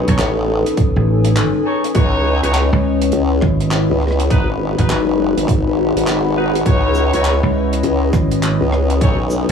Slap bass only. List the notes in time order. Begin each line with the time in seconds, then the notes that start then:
0.08 B1
0.96 A1
2.73 C#2
3.42 G#1
4.79 G#1
7.43 C#2
8.13 G#1